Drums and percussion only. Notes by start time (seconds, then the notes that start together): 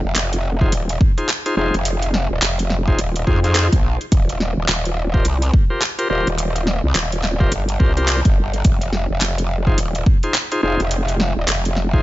0.16 clap, closed hi-hat
0.33 closed hi-hat
0.61 kick
0.72 closed hi-hat
0.89 closed hi-hat
1.01 kick
1.18 closed hi-hat
1.29 clap, closed hi-hat
1.46 closed hi-hat
1.74 closed hi-hat
1.85 closed hi-hat
2.02 closed hi-hat
2.14 snare
2.42 clap, closed hi-hat
2.59 closed hi-hat
2.70 snare
2.88 kick
2.99 closed hi-hat
3.16 closed hi-hat
3.27 kick
3.44 closed hi-hat
3.55 clap, closed hi-hat
3.73 kick, closed hi-hat
4.01 closed hi-hat
4.12 kick, closed hi-hat
4.29 closed hi-hat
4.40 snare
4.68 clap, closed hi-hat
4.85 closed hi-hat
5.14 kick
5.25 closed hi-hat
5.42 closed hi-hat
5.54 kick
5.82 clap, closed hi-hat
5.99 closed hi-hat
6.27 closed hi-hat
6.38 closed hi-hat
6.56 closed hi-hat
6.67 snare
6.95 clap, closed hi-hat
7.12 closed hi-hat
7.24 clap, snare
7.41 kick
7.52 closed hi-hat
7.69 closed hi-hat
7.80 kick
7.97 closed hi-hat
8.08 clap, closed hi-hat
8.25 kick, closed hi-hat
8.54 closed hi-hat
8.65 kick, closed hi-hat
8.82 closed hi-hat
8.93 snare
9.21 clap, closed hi-hat
9.38 closed hi-hat
9.67 kick
9.78 closed hi-hat
9.95 closed hi-hat
10.06 kick
10.23 closed hi-hat
10.34 clap, closed hi-hat
10.52 closed hi-hat
10.80 closed hi-hat
10.91 closed hi-hat
11.08 closed hi-hat
11.20 snare
11.48 clap, closed hi-hat
11.65 closed hi-hat
11.76 snare
11.93 kick